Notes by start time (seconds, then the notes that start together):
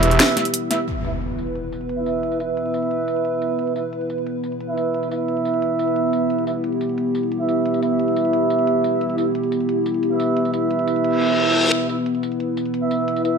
Already playing: E1 B3 E4 G4 B4 E5
0.03 closed hi-hat
0.11 closed hi-hat
0.20 snare, closed hi-hat
0.37 E4 B4 E5, snare, closed hi-hat
0.45 closed hi-hat
0.54 closed hi-hat
0.71 E4 B4 E5, snare, closed hi-hat
0.88 B3 E4 B4, closed hi-hat, impact
0.96 closed hi-hat
1.05 E4 B4 E5, closed hi-hat, tambourine
1.22 closed hi-hat
1.30 closed hi-hat
1.38 closed hi-hat, tambourine
1.47 closed hi-hat
1.55 closed hi-hat
1.72 closed hi-hat, tambourine
1.81 closed hi-hat
1.89 closed hi-hat
1.98 E4 B4 E5
2.06 closed hi-hat, tambourine
2.23 closed hi-hat
2.32 closed hi-hat, tambourine
2.40 E4 B4 E5, closed hi-hat, tambourine
2.57 closed hi-hat
2.66 closed hi-hat
2.74 closed hi-hat, tambourine
2.82 closed hi-hat
2.91 closed hi-hat
3.08 closed hi-hat, tambourine
3.16 closed hi-hat
3.25 closed hi-hat
3.42 closed hi-hat, tambourine
3.59 closed hi-hat
3.67 closed hi-hat
3.76 E4 B4 E5, closed hi-hat, tambourine
3.93 closed hi-hat
4.01 closed hi-hat
4.10 closed hi-hat, tambourine
4.18 closed hi-hat
4.27 closed hi-hat
4.44 closed hi-hat, tambourine
4.52 closed hi-hat
4.60 closed hi-hat
4.69 E4 B4 E5
4.77 closed hi-hat, tambourine
4.94 closed hi-hat
5.03 closed hi-hat, tambourine
5.11 E4 B4 E5, closed hi-hat, tambourine
5.28 closed hi-hat
5.37 closed hi-hat
5.45 closed hi-hat, tambourine
5.54 closed hi-hat
5.62 closed hi-hat
5.79 closed hi-hat, tambourine
5.88 closed hi-hat
5.96 closed hi-hat
6.13 closed hi-hat, tambourine
6.30 G4, closed hi-hat
6.38 closed hi-hat
6.47 E4 B4 E5, closed hi-hat, tambourine
6.64 closed hi-hat
6.72 closed hi-hat
6.81 closed hi-hat, tambourine
6.89 closed hi-hat
6.98 closed hi-hat
7.15 closed hi-hat, tambourine
7.23 closed hi-hat
7.32 closed hi-hat
7.40 E4 B4 E5
7.49 closed hi-hat, tambourine
7.66 closed hi-hat
7.74 closed hi-hat, tambourine
7.83 E4 B4 E5, closed hi-hat, tambourine
7.99 closed hi-hat
8.08 closed hi-hat
8.16 closed hi-hat, tambourine
8.25 closed hi-hat
8.33 closed hi-hat
8.50 closed hi-hat, tambourine
8.59 closed hi-hat
8.67 closed hi-hat
8.84 closed hi-hat, tambourine
9.01 closed hi-hat
9.10 closed hi-hat
9.18 E4 B4 E5, closed hi-hat, tambourine
9.35 closed hi-hat
9.43 closed hi-hat
9.52 closed hi-hat, tambourine
9.60 closed hi-hat
9.69 closed hi-hat
9.86 closed hi-hat, tambourine
9.94 closed hi-hat
10.03 closed hi-hat
10.11 E4 B4 E5
10.20 closed hi-hat, tambourine
10.37 closed hi-hat
10.45 closed hi-hat, tambourine
10.54 E4 B4 E5, closed hi-hat, tambourine
10.71 closed hi-hat
10.79 closed hi-hat
10.88 closed hi-hat, tambourine
10.96 closed hi-hat
11.04 closed hi-hat, reverse cymbal
11.13 tambourine
11.21 closed hi-hat, tambourine
11.30 closed hi-hat
11.38 closed hi-hat
11.55 closed hi-hat, tambourine
11.72 B4, closed hi-hat
11.81 closed hi-hat
11.89 E4 B4 E5, closed hi-hat, tambourine
12.06 closed hi-hat
12.15 closed hi-hat
12.23 closed hi-hat, tambourine
12.32 closed hi-hat
12.40 closed hi-hat
12.57 closed hi-hat, tambourine
12.65 closed hi-hat
12.74 closed hi-hat
12.82 E4 B4 E5
12.91 closed hi-hat, tambourine
13.08 closed hi-hat
13.16 closed hi-hat, tambourine
13.25 E4 B4 E5, closed hi-hat, tambourine